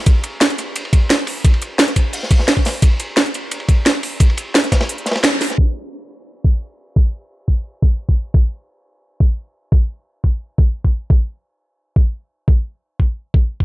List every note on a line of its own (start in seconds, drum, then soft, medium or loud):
0.06 kick loud
0.06 closed hi-hat medium
0.06 ride medium
0.24 closed hi-hat medium
0.24 ride medium
0.41 snare loud
0.41 closed hi-hat medium
0.41 ride loud
0.50 closed hi-hat soft
0.50 ride soft
0.58 snare soft
0.58 closed hi-hat medium
0.58 ride medium
0.76 closed hi-hat medium
0.76 ride medium
0.85 ride soft
0.93 kick loud
0.93 closed hi-hat medium
0.93 ride medium
1.10 snare loud
1.10 closed hi-hat medium
1.10 ride medium
1.27 open hi-hat medium
1.27 ride medium
1.45 kick loud
1.45 closed hi-hat medium
1.45 ride medium
1.54 ride soft
1.62 closed hi-hat medium
1.62 ride medium
1.78 snare loud
1.78 closed hi-hat medium
1.78 ride medium
1.88 snare soft
1.88 closed hi-hat soft
1.96 kick medium
1.96 closed hi-hat medium
1.96 ride medium
2.13 closed hi-hat medium
2.13 open hi-hat medium
2.23 snare medium
2.31 kick loud
2.31 closed hi-hat medium
2.31 ride medium
2.39 snare medium
2.48 snare loud
2.48 closed hi-hat medium
2.48 ride medium
2.57 kick medium
2.65 snare loud
2.65 open hi-hat medium
2.65 ride medium
2.82 kick loud
2.82 closed hi-hat medium
2.82 ride medium
3.00 closed hi-hat medium
3.00 ride medium
3.17 snare loud
3.17 closed hi-hat medium
3.17 ride medium
3.26 closed hi-hat soft
3.26 ride soft
3.34 closed hi-hat medium
3.34 ride medium
3.51 closed hi-hat medium
3.51 ride loud
3.60 ride soft
3.68 kick loud
3.68 closed hi-hat medium
3.68 ride medium
3.86 snare loud
3.86 closed hi-hat medium
3.86 ride medium
4.03 open hi-hat medium
4.03 ride medium
4.20 kick loud
4.20 closed hi-hat medium
4.20 ride medium
4.30 ride soft
4.37 closed hi-hat medium
4.37 ride medium
4.54 snare loud
4.54 closed hi-hat loud
4.54 ride medium
4.64 snare soft
4.64 closed hi-hat soft
4.72 kick medium
4.72 snare loud
4.72 closed hi-hat medium
4.72 ride medium
4.81 snare loud
4.81 ride medium
4.89 closed hi-hat medium
4.98 closed hi-hat soft
5.06 snare medium
5.06 closed hi-hat medium
5.06 ride medium
5.11 snare loud
5.11 ride medium
5.15 snare loud
5.15 ride medium
5.23 snare loud
5.23 closed hi-hat loud
5.23 ride medium
5.41 snare soft
5.41 open hi-hat medium
5.41 ride medium
5.50 snare medium
5.50 closed hi-hat soft
5.58 kick loud
6.44 kick medium
6.96 kick loud
7.48 kick medium
7.82 kick medium
8.09 kick medium
8.34 kick loud
9.20 kick loud
9.72 kick loud
10.24 kick medium
10.58 kick medium
10.84 kick medium
11.10 kick loud
11.96 kick medium
12.48 kick loud
13.00 kick medium
13.34 kick medium
13.60 kick medium